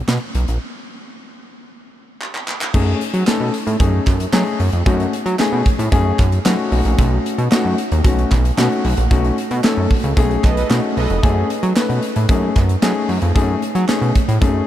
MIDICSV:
0, 0, Header, 1, 5, 480
1, 0, Start_track
1, 0, Tempo, 530973
1, 556, Time_signature, 4, 2, 24, 8
1, 13261, End_track
2, 0, Start_track
2, 0, Title_t, "Analog polysynth"
2, 0, Program_c, 0, 90
2, 9440, Note_on_c, 0, 69, 91
2, 9440, Note_on_c, 0, 71, 84
2, 9443, Note_on_c, 0, 75, 100
2, 9540, Note_off_c, 0, 69, 0
2, 9540, Note_off_c, 0, 71, 0
2, 9542, Note_off_c, 0, 75, 0
2, 9556, Note_on_c, 0, 71, 98
2, 9557, Note_on_c, 0, 69, 92
2, 9557, Note_on_c, 0, 75, 107
2, 9658, Note_off_c, 0, 69, 0
2, 9658, Note_off_c, 0, 71, 0
2, 9658, Note_off_c, 0, 75, 0
2, 9916, Note_on_c, 0, 71, 94
2, 9916, Note_on_c, 0, 75, 118
2, 9918, Note_on_c, 0, 69, 92
2, 10120, Note_off_c, 0, 71, 0
2, 10120, Note_off_c, 0, 75, 0
2, 10121, Note_off_c, 0, 69, 0
2, 13261, End_track
3, 0, Start_track
3, 0, Title_t, "Grand piano"
3, 0, Program_c, 1, 0
3, 2473, Note_on_c, 1, 57, 93
3, 2476, Note_on_c, 1, 61, 86
3, 2479, Note_on_c, 1, 63, 83
3, 2480, Note_on_c, 1, 68, 103
3, 2690, Note_off_c, 1, 57, 0
3, 2691, Note_off_c, 1, 61, 0
3, 2693, Note_off_c, 1, 63, 0
3, 2694, Note_off_c, 1, 68, 0
3, 2954, Note_on_c, 1, 57, 82
3, 2954, Note_on_c, 1, 61, 74
3, 2959, Note_on_c, 1, 63, 78
3, 2961, Note_on_c, 1, 69, 91
3, 3170, Note_off_c, 1, 57, 0
3, 3171, Note_off_c, 1, 61, 0
3, 3173, Note_off_c, 1, 63, 0
3, 3174, Note_off_c, 1, 69, 0
3, 3431, Note_on_c, 1, 57, 72
3, 3432, Note_on_c, 1, 61, 79
3, 3434, Note_on_c, 1, 63, 78
3, 3437, Note_on_c, 1, 68, 88
3, 3649, Note_off_c, 1, 57, 0
3, 3650, Note_off_c, 1, 61, 0
3, 3651, Note_off_c, 1, 63, 0
3, 3652, Note_off_c, 1, 68, 0
3, 3909, Note_on_c, 1, 57, 93
3, 3910, Note_on_c, 1, 61, 84
3, 3913, Note_on_c, 1, 63, 90
3, 3915, Note_on_c, 1, 68, 108
3, 4128, Note_off_c, 1, 57, 0
3, 4128, Note_off_c, 1, 61, 0
3, 4130, Note_off_c, 1, 63, 0
3, 4131, Note_off_c, 1, 68, 0
3, 4392, Note_on_c, 1, 57, 93
3, 4395, Note_on_c, 1, 61, 80
3, 4397, Note_on_c, 1, 63, 86
3, 4399, Note_on_c, 1, 66, 90
3, 4609, Note_off_c, 1, 57, 0
3, 4611, Note_off_c, 1, 61, 0
3, 4612, Note_off_c, 1, 63, 0
3, 4613, Note_off_c, 1, 66, 0
3, 4867, Note_on_c, 1, 57, 90
3, 4871, Note_on_c, 1, 61, 82
3, 4873, Note_on_c, 1, 63, 87
3, 4875, Note_on_c, 1, 68, 107
3, 5087, Note_off_c, 1, 57, 0
3, 5089, Note_off_c, 1, 61, 0
3, 5090, Note_off_c, 1, 63, 0
3, 5091, Note_off_c, 1, 68, 0
3, 5348, Note_on_c, 1, 57, 87
3, 5350, Note_on_c, 1, 61, 93
3, 5351, Note_on_c, 1, 63, 83
3, 5356, Note_on_c, 1, 68, 114
3, 5568, Note_off_c, 1, 57, 0
3, 5569, Note_off_c, 1, 61, 0
3, 5569, Note_off_c, 1, 63, 0
3, 5572, Note_off_c, 1, 68, 0
3, 5830, Note_on_c, 1, 57, 94
3, 5833, Note_on_c, 1, 61, 81
3, 5835, Note_on_c, 1, 63, 84
3, 5840, Note_on_c, 1, 66, 101
3, 6048, Note_off_c, 1, 57, 0
3, 6050, Note_off_c, 1, 61, 0
3, 6051, Note_off_c, 1, 63, 0
3, 6053, Note_off_c, 1, 66, 0
3, 6066, Note_on_c, 1, 57, 79
3, 6067, Note_on_c, 1, 61, 70
3, 6068, Note_on_c, 1, 63, 77
3, 6073, Note_on_c, 1, 66, 88
3, 6647, Note_off_c, 1, 57, 0
3, 6648, Note_off_c, 1, 61, 0
3, 6648, Note_off_c, 1, 63, 0
3, 6651, Note_off_c, 1, 66, 0
3, 6788, Note_on_c, 1, 57, 89
3, 6790, Note_on_c, 1, 61, 70
3, 6791, Note_on_c, 1, 63, 89
3, 6796, Note_on_c, 1, 66, 101
3, 7007, Note_off_c, 1, 57, 0
3, 7008, Note_off_c, 1, 61, 0
3, 7009, Note_off_c, 1, 63, 0
3, 7011, Note_off_c, 1, 66, 0
3, 7264, Note_on_c, 1, 57, 76
3, 7270, Note_on_c, 1, 61, 79
3, 7272, Note_on_c, 1, 63, 73
3, 7272, Note_on_c, 1, 66, 92
3, 7486, Note_off_c, 1, 57, 0
3, 7488, Note_off_c, 1, 61, 0
3, 7490, Note_off_c, 1, 63, 0
3, 7490, Note_off_c, 1, 66, 0
3, 7748, Note_on_c, 1, 57, 89
3, 7754, Note_on_c, 1, 61, 87
3, 7755, Note_on_c, 1, 63, 86
3, 7758, Note_on_c, 1, 66, 110
3, 7968, Note_off_c, 1, 57, 0
3, 7970, Note_off_c, 1, 61, 0
3, 7971, Note_off_c, 1, 63, 0
3, 7973, Note_off_c, 1, 66, 0
3, 8232, Note_on_c, 1, 57, 91
3, 8236, Note_on_c, 1, 61, 86
3, 8236, Note_on_c, 1, 63, 79
3, 8237, Note_on_c, 1, 66, 95
3, 8449, Note_off_c, 1, 57, 0
3, 8451, Note_off_c, 1, 61, 0
3, 8451, Note_off_c, 1, 63, 0
3, 8452, Note_off_c, 1, 66, 0
3, 8708, Note_on_c, 1, 57, 90
3, 8711, Note_on_c, 1, 61, 82
3, 8714, Note_on_c, 1, 63, 79
3, 8715, Note_on_c, 1, 69, 99
3, 8928, Note_off_c, 1, 57, 0
3, 8929, Note_off_c, 1, 61, 0
3, 8931, Note_off_c, 1, 63, 0
3, 8931, Note_off_c, 1, 69, 0
3, 9188, Note_on_c, 1, 57, 97
3, 9192, Note_on_c, 1, 61, 85
3, 9193, Note_on_c, 1, 63, 93
3, 9197, Note_on_c, 1, 68, 110
3, 9408, Note_off_c, 1, 57, 0
3, 9410, Note_off_c, 1, 61, 0
3, 9410, Note_off_c, 1, 63, 0
3, 9412, Note_off_c, 1, 68, 0
3, 9671, Note_on_c, 1, 57, 95
3, 9674, Note_on_c, 1, 61, 84
3, 9674, Note_on_c, 1, 63, 85
3, 9679, Note_on_c, 1, 66, 91
3, 9889, Note_off_c, 1, 57, 0
3, 9890, Note_off_c, 1, 63, 0
3, 9891, Note_off_c, 1, 61, 0
3, 9893, Note_off_c, 1, 66, 0
3, 10148, Note_on_c, 1, 57, 96
3, 10151, Note_on_c, 1, 61, 81
3, 10152, Note_on_c, 1, 63, 79
3, 10155, Note_on_c, 1, 68, 101
3, 10367, Note_off_c, 1, 57, 0
3, 10369, Note_off_c, 1, 61, 0
3, 10369, Note_off_c, 1, 63, 0
3, 10371, Note_off_c, 1, 68, 0
3, 10630, Note_on_c, 1, 57, 81
3, 10632, Note_on_c, 1, 61, 69
3, 10636, Note_on_c, 1, 63, 70
3, 10636, Note_on_c, 1, 71, 99
3, 10849, Note_off_c, 1, 57, 0
3, 10849, Note_off_c, 1, 61, 0
3, 10851, Note_off_c, 1, 63, 0
3, 10852, Note_off_c, 1, 71, 0
3, 11108, Note_on_c, 1, 57, 85
3, 11112, Note_on_c, 1, 61, 75
3, 11113, Note_on_c, 1, 63, 75
3, 11116, Note_on_c, 1, 68, 84
3, 11327, Note_off_c, 1, 57, 0
3, 11330, Note_off_c, 1, 61, 0
3, 11330, Note_off_c, 1, 63, 0
3, 11331, Note_off_c, 1, 68, 0
3, 11589, Note_on_c, 1, 57, 96
3, 11592, Note_on_c, 1, 61, 88
3, 11593, Note_on_c, 1, 63, 91
3, 11594, Note_on_c, 1, 68, 106
3, 11808, Note_off_c, 1, 57, 0
3, 11810, Note_off_c, 1, 61, 0
3, 11810, Note_off_c, 1, 63, 0
3, 11811, Note_off_c, 1, 68, 0
3, 12066, Note_on_c, 1, 57, 98
3, 12069, Note_on_c, 1, 61, 80
3, 12071, Note_on_c, 1, 63, 84
3, 12074, Note_on_c, 1, 68, 100
3, 12287, Note_off_c, 1, 57, 0
3, 12288, Note_off_c, 1, 61, 0
3, 12289, Note_off_c, 1, 63, 0
3, 12291, Note_off_c, 1, 68, 0
3, 12548, Note_on_c, 1, 57, 85
3, 12552, Note_on_c, 1, 61, 87
3, 12553, Note_on_c, 1, 63, 80
3, 12555, Note_on_c, 1, 68, 89
3, 12767, Note_off_c, 1, 57, 0
3, 12769, Note_off_c, 1, 61, 0
3, 12770, Note_off_c, 1, 63, 0
3, 12771, Note_off_c, 1, 68, 0
3, 13027, Note_on_c, 1, 57, 96
3, 13030, Note_on_c, 1, 61, 84
3, 13031, Note_on_c, 1, 63, 80
3, 13034, Note_on_c, 1, 68, 96
3, 13247, Note_off_c, 1, 57, 0
3, 13249, Note_off_c, 1, 61, 0
3, 13249, Note_off_c, 1, 63, 0
3, 13250, Note_off_c, 1, 68, 0
3, 13261, End_track
4, 0, Start_track
4, 0, Title_t, "Analog synth bass"
4, 0, Program_c, 2, 38
4, 72, Note_on_c, 2, 47, 97
4, 163, Note_off_c, 2, 47, 0
4, 313, Note_on_c, 2, 35, 100
4, 404, Note_off_c, 2, 35, 0
4, 433, Note_on_c, 2, 34, 76
4, 524, Note_off_c, 2, 34, 0
4, 2477, Note_on_c, 2, 42, 111
4, 2657, Note_off_c, 2, 42, 0
4, 2835, Note_on_c, 2, 54, 111
4, 2926, Note_off_c, 2, 54, 0
4, 3077, Note_on_c, 2, 47, 81
4, 3167, Note_off_c, 2, 47, 0
4, 3315, Note_on_c, 2, 45, 86
4, 3406, Note_off_c, 2, 45, 0
4, 3433, Note_on_c, 2, 42, 96
4, 3615, Note_off_c, 2, 42, 0
4, 3678, Note_on_c, 2, 42, 84
4, 3857, Note_off_c, 2, 42, 0
4, 3913, Note_on_c, 2, 54, 122
4, 4004, Note_off_c, 2, 54, 0
4, 4155, Note_on_c, 2, 42, 97
4, 4246, Note_off_c, 2, 42, 0
4, 4272, Note_on_c, 2, 41, 91
4, 4364, Note_off_c, 2, 41, 0
4, 4395, Note_on_c, 2, 42, 116
4, 4575, Note_off_c, 2, 42, 0
4, 4752, Note_on_c, 2, 54, 107
4, 4844, Note_off_c, 2, 54, 0
4, 4993, Note_on_c, 2, 47, 88
4, 5084, Note_off_c, 2, 47, 0
4, 5233, Note_on_c, 2, 45, 103
4, 5324, Note_off_c, 2, 45, 0
4, 5352, Note_on_c, 2, 42, 97
4, 5534, Note_off_c, 2, 42, 0
4, 5595, Note_on_c, 2, 42, 85
4, 5776, Note_off_c, 2, 42, 0
4, 5833, Note_on_c, 2, 54, 97
4, 5924, Note_off_c, 2, 54, 0
4, 6071, Note_on_c, 2, 35, 97
4, 6163, Note_off_c, 2, 35, 0
4, 6192, Note_on_c, 2, 34, 101
4, 6284, Note_off_c, 2, 34, 0
4, 6314, Note_on_c, 2, 35, 126
4, 6495, Note_off_c, 2, 35, 0
4, 6674, Note_on_c, 2, 47, 99
4, 6765, Note_off_c, 2, 47, 0
4, 6914, Note_on_c, 2, 42, 76
4, 7005, Note_off_c, 2, 42, 0
4, 7155, Note_on_c, 2, 39, 96
4, 7246, Note_off_c, 2, 39, 0
4, 7273, Note_on_c, 2, 35, 91
4, 7454, Note_off_c, 2, 35, 0
4, 7516, Note_on_c, 2, 35, 99
4, 7697, Note_off_c, 2, 35, 0
4, 7754, Note_on_c, 2, 47, 114
4, 7845, Note_off_c, 2, 47, 0
4, 7994, Note_on_c, 2, 35, 114
4, 8085, Note_off_c, 2, 35, 0
4, 8114, Note_on_c, 2, 34, 89
4, 8205, Note_off_c, 2, 34, 0
4, 8234, Note_on_c, 2, 35, 117
4, 8415, Note_off_c, 2, 35, 0
4, 8596, Note_on_c, 2, 47, 114
4, 8686, Note_off_c, 2, 47, 0
4, 8834, Note_on_c, 2, 42, 82
4, 8925, Note_off_c, 2, 42, 0
4, 9074, Note_on_c, 2, 37, 99
4, 9165, Note_off_c, 2, 37, 0
4, 9192, Note_on_c, 2, 35, 106
4, 9374, Note_off_c, 2, 35, 0
4, 9436, Note_on_c, 2, 35, 82
4, 9617, Note_off_c, 2, 35, 0
4, 9675, Note_on_c, 2, 47, 114
4, 9766, Note_off_c, 2, 47, 0
4, 9913, Note_on_c, 2, 35, 113
4, 10005, Note_off_c, 2, 35, 0
4, 10033, Note_on_c, 2, 29, 94
4, 10124, Note_off_c, 2, 29, 0
4, 10156, Note_on_c, 2, 42, 103
4, 10336, Note_off_c, 2, 42, 0
4, 10513, Note_on_c, 2, 54, 117
4, 10604, Note_off_c, 2, 54, 0
4, 10752, Note_on_c, 2, 47, 74
4, 10844, Note_off_c, 2, 47, 0
4, 10995, Note_on_c, 2, 45, 90
4, 11085, Note_off_c, 2, 45, 0
4, 11110, Note_on_c, 2, 42, 92
4, 11292, Note_off_c, 2, 42, 0
4, 11354, Note_on_c, 2, 42, 97
4, 11535, Note_off_c, 2, 42, 0
4, 11594, Note_on_c, 2, 54, 113
4, 11685, Note_off_c, 2, 54, 0
4, 11832, Note_on_c, 2, 42, 101
4, 11924, Note_off_c, 2, 42, 0
4, 11951, Note_on_c, 2, 41, 92
4, 12043, Note_off_c, 2, 41, 0
4, 12074, Note_on_c, 2, 42, 119
4, 12255, Note_off_c, 2, 42, 0
4, 12430, Note_on_c, 2, 54, 115
4, 12523, Note_off_c, 2, 54, 0
4, 12669, Note_on_c, 2, 47, 90
4, 12762, Note_off_c, 2, 47, 0
4, 12911, Note_on_c, 2, 45, 96
4, 13003, Note_off_c, 2, 45, 0
4, 13032, Note_on_c, 2, 42, 97
4, 13214, Note_off_c, 2, 42, 0
4, 13261, End_track
5, 0, Start_track
5, 0, Title_t, "Drums"
5, 76, Note_on_c, 9, 38, 101
5, 77, Note_on_c, 9, 39, 112
5, 86, Note_off_c, 9, 39, 0
5, 86, Note_on_c, 9, 39, 78
5, 166, Note_off_c, 9, 38, 0
5, 176, Note_off_c, 9, 39, 0
5, 313, Note_on_c, 9, 42, 70
5, 403, Note_off_c, 9, 42, 0
5, 434, Note_on_c, 9, 42, 59
5, 525, Note_off_c, 9, 42, 0
5, 2003, Note_on_c, 9, 39, 58
5, 2093, Note_off_c, 9, 39, 0
5, 2123, Note_on_c, 9, 39, 58
5, 2214, Note_off_c, 9, 39, 0
5, 2242, Note_on_c, 9, 39, 82
5, 2332, Note_off_c, 9, 39, 0
5, 2363, Note_on_c, 9, 39, 93
5, 2453, Note_off_c, 9, 39, 0
5, 2479, Note_on_c, 9, 36, 113
5, 2481, Note_on_c, 9, 49, 102
5, 2570, Note_off_c, 9, 36, 0
5, 2572, Note_off_c, 9, 49, 0
5, 2722, Note_on_c, 9, 42, 69
5, 2813, Note_off_c, 9, 42, 0
5, 2835, Note_on_c, 9, 42, 55
5, 2926, Note_off_c, 9, 42, 0
5, 2959, Note_on_c, 9, 39, 91
5, 2963, Note_on_c, 9, 38, 104
5, 2972, Note_off_c, 9, 39, 0
5, 2972, Note_on_c, 9, 39, 88
5, 3053, Note_off_c, 9, 38, 0
5, 3063, Note_off_c, 9, 39, 0
5, 3199, Note_on_c, 9, 42, 82
5, 3289, Note_off_c, 9, 42, 0
5, 3320, Note_on_c, 9, 42, 57
5, 3410, Note_off_c, 9, 42, 0
5, 3435, Note_on_c, 9, 36, 125
5, 3435, Note_on_c, 9, 42, 95
5, 3525, Note_off_c, 9, 42, 0
5, 3526, Note_off_c, 9, 36, 0
5, 3676, Note_on_c, 9, 42, 81
5, 3678, Note_on_c, 9, 36, 109
5, 3680, Note_on_c, 9, 39, 70
5, 3766, Note_off_c, 9, 42, 0
5, 3768, Note_off_c, 9, 36, 0
5, 3770, Note_off_c, 9, 39, 0
5, 3797, Note_on_c, 9, 42, 57
5, 3888, Note_off_c, 9, 42, 0
5, 3917, Note_on_c, 9, 38, 109
5, 3918, Note_on_c, 9, 39, 116
5, 3927, Note_off_c, 9, 39, 0
5, 3927, Note_on_c, 9, 39, 91
5, 4008, Note_off_c, 9, 38, 0
5, 4017, Note_off_c, 9, 39, 0
5, 4040, Note_on_c, 9, 42, 35
5, 4130, Note_off_c, 9, 42, 0
5, 4155, Note_on_c, 9, 46, 67
5, 4245, Note_off_c, 9, 46, 0
5, 4271, Note_on_c, 9, 42, 58
5, 4362, Note_off_c, 9, 42, 0
5, 4395, Note_on_c, 9, 36, 123
5, 4396, Note_on_c, 9, 42, 75
5, 4486, Note_off_c, 9, 36, 0
5, 4487, Note_off_c, 9, 42, 0
5, 4520, Note_on_c, 9, 42, 39
5, 4610, Note_off_c, 9, 42, 0
5, 4641, Note_on_c, 9, 42, 77
5, 4731, Note_off_c, 9, 42, 0
5, 4755, Note_on_c, 9, 42, 55
5, 4845, Note_off_c, 9, 42, 0
5, 4874, Note_on_c, 9, 39, 83
5, 4877, Note_on_c, 9, 38, 103
5, 4887, Note_off_c, 9, 39, 0
5, 4887, Note_on_c, 9, 39, 84
5, 4968, Note_off_c, 9, 38, 0
5, 4978, Note_off_c, 9, 39, 0
5, 5113, Note_on_c, 9, 42, 88
5, 5116, Note_on_c, 9, 36, 93
5, 5204, Note_off_c, 9, 42, 0
5, 5206, Note_off_c, 9, 36, 0
5, 5237, Note_on_c, 9, 42, 62
5, 5327, Note_off_c, 9, 42, 0
5, 5353, Note_on_c, 9, 36, 122
5, 5353, Note_on_c, 9, 42, 94
5, 5443, Note_off_c, 9, 36, 0
5, 5443, Note_off_c, 9, 42, 0
5, 5595, Note_on_c, 9, 42, 91
5, 5596, Note_on_c, 9, 36, 109
5, 5598, Note_on_c, 9, 39, 63
5, 5686, Note_off_c, 9, 42, 0
5, 5687, Note_off_c, 9, 36, 0
5, 5688, Note_off_c, 9, 39, 0
5, 5716, Note_on_c, 9, 42, 53
5, 5807, Note_off_c, 9, 42, 0
5, 5837, Note_on_c, 9, 38, 109
5, 5839, Note_on_c, 9, 39, 110
5, 5847, Note_off_c, 9, 39, 0
5, 5847, Note_on_c, 9, 39, 90
5, 5928, Note_off_c, 9, 38, 0
5, 5937, Note_off_c, 9, 39, 0
5, 6074, Note_on_c, 9, 46, 75
5, 6164, Note_off_c, 9, 46, 0
5, 6193, Note_on_c, 9, 42, 56
5, 6284, Note_off_c, 9, 42, 0
5, 6315, Note_on_c, 9, 36, 117
5, 6318, Note_on_c, 9, 42, 77
5, 6405, Note_off_c, 9, 36, 0
5, 6409, Note_off_c, 9, 42, 0
5, 6563, Note_on_c, 9, 42, 72
5, 6653, Note_off_c, 9, 42, 0
5, 6676, Note_on_c, 9, 42, 54
5, 6766, Note_off_c, 9, 42, 0
5, 6795, Note_on_c, 9, 39, 90
5, 6797, Note_on_c, 9, 38, 116
5, 6807, Note_off_c, 9, 39, 0
5, 6807, Note_on_c, 9, 39, 85
5, 6888, Note_off_c, 9, 38, 0
5, 6898, Note_off_c, 9, 39, 0
5, 7036, Note_on_c, 9, 42, 83
5, 7126, Note_off_c, 9, 42, 0
5, 7157, Note_on_c, 9, 42, 60
5, 7247, Note_off_c, 9, 42, 0
5, 7273, Note_on_c, 9, 36, 126
5, 7274, Note_on_c, 9, 42, 109
5, 7364, Note_off_c, 9, 36, 0
5, 7365, Note_off_c, 9, 42, 0
5, 7399, Note_on_c, 9, 42, 39
5, 7489, Note_off_c, 9, 42, 0
5, 7516, Note_on_c, 9, 42, 85
5, 7517, Note_on_c, 9, 36, 100
5, 7518, Note_on_c, 9, 39, 68
5, 7607, Note_off_c, 9, 36, 0
5, 7607, Note_off_c, 9, 42, 0
5, 7608, Note_off_c, 9, 39, 0
5, 7639, Note_on_c, 9, 42, 55
5, 7730, Note_off_c, 9, 42, 0
5, 7759, Note_on_c, 9, 38, 112
5, 7760, Note_on_c, 9, 39, 112
5, 7769, Note_off_c, 9, 39, 0
5, 7769, Note_on_c, 9, 39, 89
5, 7850, Note_off_c, 9, 38, 0
5, 7859, Note_off_c, 9, 39, 0
5, 7882, Note_on_c, 9, 42, 33
5, 7972, Note_off_c, 9, 42, 0
5, 7997, Note_on_c, 9, 46, 75
5, 8087, Note_off_c, 9, 46, 0
5, 8111, Note_on_c, 9, 42, 64
5, 8201, Note_off_c, 9, 42, 0
5, 8235, Note_on_c, 9, 36, 104
5, 8238, Note_on_c, 9, 42, 79
5, 8326, Note_off_c, 9, 36, 0
5, 8328, Note_off_c, 9, 42, 0
5, 8358, Note_on_c, 9, 42, 37
5, 8448, Note_off_c, 9, 42, 0
5, 8480, Note_on_c, 9, 42, 76
5, 8570, Note_off_c, 9, 42, 0
5, 8595, Note_on_c, 9, 42, 53
5, 8686, Note_off_c, 9, 42, 0
5, 8714, Note_on_c, 9, 39, 97
5, 8718, Note_on_c, 9, 38, 105
5, 8727, Note_off_c, 9, 39, 0
5, 8727, Note_on_c, 9, 39, 78
5, 8808, Note_off_c, 9, 38, 0
5, 8818, Note_off_c, 9, 39, 0
5, 8952, Note_on_c, 9, 46, 75
5, 8956, Note_on_c, 9, 36, 93
5, 9042, Note_off_c, 9, 46, 0
5, 9046, Note_off_c, 9, 36, 0
5, 9074, Note_on_c, 9, 42, 57
5, 9164, Note_off_c, 9, 42, 0
5, 9193, Note_on_c, 9, 36, 127
5, 9193, Note_on_c, 9, 42, 104
5, 9283, Note_off_c, 9, 36, 0
5, 9283, Note_off_c, 9, 42, 0
5, 9319, Note_on_c, 9, 42, 35
5, 9409, Note_off_c, 9, 42, 0
5, 9437, Note_on_c, 9, 36, 101
5, 9437, Note_on_c, 9, 42, 77
5, 9440, Note_on_c, 9, 39, 71
5, 9527, Note_off_c, 9, 36, 0
5, 9527, Note_off_c, 9, 42, 0
5, 9530, Note_off_c, 9, 39, 0
5, 9557, Note_on_c, 9, 42, 54
5, 9648, Note_off_c, 9, 42, 0
5, 9677, Note_on_c, 9, 39, 116
5, 9679, Note_on_c, 9, 38, 108
5, 9689, Note_off_c, 9, 39, 0
5, 9689, Note_on_c, 9, 39, 86
5, 9770, Note_off_c, 9, 38, 0
5, 9779, Note_off_c, 9, 39, 0
5, 9918, Note_on_c, 9, 46, 71
5, 10008, Note_off_c, 9, 46, 0
5, 10035, Note_on_c, 9, 42, 61
5, 10126, Note_off_c, 9, 42, 0
5, 10156, Note_on_c, 9, 36, 124
5, 10158, Note_on_c, 9, 42, 73
5, 10246, Note_off_c, 9, 36, 0
5, 10248, Note_off_c, 9, 42, 0
5, 10398, Note_on_c, 9, 42, 80
5, 10488, Note_off_c, 9, 42, 0
5, 10513, Note_on_c, 9, 42, 55
5, 10603, Note_off_c, 9, 42, 0
5, 10635, Note_on_c, 9, 39, 92
5, 10636, Note_on_c, 9, 38, 112
5, 10645, Note_off_c, 9, 39, 0
5, 10645, Note_on_c, 9, 39, 87
5, 10726, Note_off_c, 9, 38, 0
5, 10736, Note_off_c, 9, 39, 0
5, 10754, Note_on_c, 9, 42, 41
5, 10845, Note_off_c, 9, 42, 0
5, 10871, Note_on_c, 9, 42, 83
5, 10961, Note_off_c, 9, 42, 0
5, 10991, Note_on_c, 9, 42, 57
5, 11081, Note_off_c, 9, 42, 0
5, 11108, Note_on_c, 9, 42, 100
5, 11111, Note_on_c, 9, 36, 125
5, 11199, Note_off_c, 9, 42, 0
5, 11201, Note_off_c, 9, 36, 0
5, 11351, Note_on_c, 9, 42, 90
5, 11355, Note_on_c, 9, 36, 98
5, 11360, Note_on_c, 9, 39, 58
5, 11442, Note_off_c, 9, 42, 0
5, 11445, Note_off_c, 9, 36, 0
5, 11451, Note_off_c, 9, 39, 0
5, 11474, Note_on_c, 9, 42, 57
5, 11564, Note_off_c, 9, 42, 0
5, 11593, Note_on_c, 9, 38, 104
5, 11600, Note_on_c, 9, 39, 108
5, 11603, Note_off_c, 9, 39, 0
5, 11603, Note_on_c, 9, 39, 91
5, 11684, Note_off_c, 9, 38, 0
5, 11694, Note_off_c, 9, 39, 0
5, 11832, Note_on_c, 9, 46, 79
5, 11922, Note_off_c, 9, 46, 0
5, 11949, Note_on_c, 9, 42, 63
5, 12039, Note_off_c, 9, 42, 0
5, 12074, Note_on_c, 9, 36, 116
5, 12074, Note_on_c, 9, 42, 84
5, 12164, Note_off_c, 9, 42, 0
5, 12165, Note_off_c, 9, 36, 0
5, 12315, Note_on_c, 9, 42, 77
5, 12405, Note_off_c, 9, 42, 0
5, 12432, Note_on_c, 9, 42, 55
5, 12522, Note_off_c, 9, 42, 0
5, 12553, Note_on_c, 9, 39, 86
5, 12555, Note_on_c, 9, 38, 105
5, 12565, Note_off_c, 9, 39, 0
5, 12565, Note_on_c, 9, 39, 80
5, 12646, Note_off_c, 9, 38, 0
5, 12655, Note_off_c, 9, 39, 0
5, 12674, Note_on_c, 9, 42, 39
5, 12764, Note_off_c, 9, 42, 0
5, 12794, Note_on_c, 9, 42, 82
5, 12796, Note_on_c, 9, 36, 93
5, 12884, Note_off_c, 9, 42, 0
5, 12887, Note_off_c, 9, 36, 0
5, 12916, Note_on_c, 9, 42, 60
5, 13006, Note_off_c, 9, 42, 0
5, 13032, Note_on_c, 9, 42, 99
5, 13033, Note_on_c, 9, 36, 125
5, 13122, Note_off_c, 9, 42, 0
5, 13123, Note_off_c, 9, 36, 0
5, 13261, End_track
0, 0, End_of_file